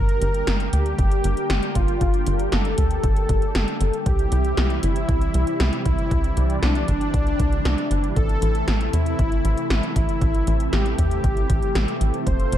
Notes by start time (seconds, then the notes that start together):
Already playing: G1 D3 G3 A#3 G4 A#4
0.09 closed hi-hat
0.22 G1, closed hi-hat
0.34 closed hi-hat
0.47 G1, snare, closed hi-hat
0.60 closed hi-hat
0.73 D2 G4, closed hi-hat
0.86 closed hi-hat
0.99 G1, kick, closed hi-hat
1.11 closed hi-hat
1.24 G1, closed hi-hat
1.37 closed hi-hat
1.50 G1, snare, closed hi-hat
1.63 closed hi-hat
1.75 G1 F4, kick, closed hi-hat
1.88 closed hi-hat
2.01 G1, kick, closed hi-hat
2.14 closed hi-hat
2.27 G1, closed hi-hat
2.39 closed hi-hat
2.52 G1 A4, snare, closed hi-hat
2.65 closed hi-hat
2.78 D2, kick, closed hi-hat
2.91 closed hi-hat
3.04 G1, kick, closed hi-hat
3.16 closed hi-hat
3.29 G1, kick, closed hi-hat
3.42 closed hi-hat
3.55 G1, snare, closed hi-hat
3.68 closed hi-hat
3.81 G1, closed hi-hat
3.93 closed hi-hat
4.06 C2 C3 E3 G3 E4 G4, kick, closed hi-hat
4.19 closed hi-hat
4.32 C2, closed hi-hat
4.45 closed hi-hat
4.57 C2, snare, closed hi-hat
4.70 closed hi-hat
4.83 G1 E4, closed hi-hat
4.96 closed hi-hat
5.09 C2, kick, closed hi-hat
5.21 closed hi-hat
5.34 C2, closed hi-hat
5.47 closed hi-hat
5.60 C2, snare, closed hi-hat
5.73 closed hi-hat
5.85 C2 E4, kick, closed hi-hat
5.98 closed hi-hat
6.11 C2 D4, kick, closed hi-hat
6.24 closed hi-hat
6.37 C2, closed hi-hat
6.50 closed hi-hat
6.62 C2 D4, snare, closed hi-hat
6.75 closed hi-hat
6.88 G1, kick, closed hi-hat
7.01 closed hi-hat
7.14 C2, kick, closed hi-hat
7.27 closed hi-hat
7.39 C2, kick, closed hi-hat
7.52 closed hi-hat
7.65 C2, snare, closed hi-hat
7.78 closed hi-hat
7.91 G1, closed hi-hat
8.04 closed hi-hat
8.16 A1 C3 A3 E4 A4, kick, closed hi-hat
8.29 closed hi-hat
8.42 A1, closed hi-hat
8.55 closed hi-hat
8.68 A1, snare, closed hi-hat
8.81 closed hi-hat
8.93 E2 E4, closed hi-hat
9.06 closed hi-hat
9.19 A1, kick, closed hi-hat
9.32 closed hi-hat
9.45 A1, closed hi-hat
9.58 closed hi-hat
9.70 A1, snare, closed hi-hat
9.83 closed hi-hat
9.96 A1 E4, kick, closed hi-hat
10.09 closed hi-hat
10.21 A1, kick, closed hi-hat
10.34 closed hi-hat
10.47 A1, closed hi-hat
10.60 closed hi-hat
10.73 A1 G4, snare, closed hi-hat
10.86 closed hi-hat
10.98 E2, kick, closed hi-hat
11.11 closed hi-hat
11.24 A1, kick, closed hi-hat
11.37 closed hi-hat
11.50 A1, kick, closed hi-hat
11.62 closed hi-hat
11.75 A1, snare, closed hi-hat
11.88 closed hi-hat
12.01 A1, closed hi-hat
12.14 closed hi-hat
12.27 F1 F3 F4 C5, kick, closed hi-hat
12.40 closed hi-hat
12.52 F1, closed hi-hat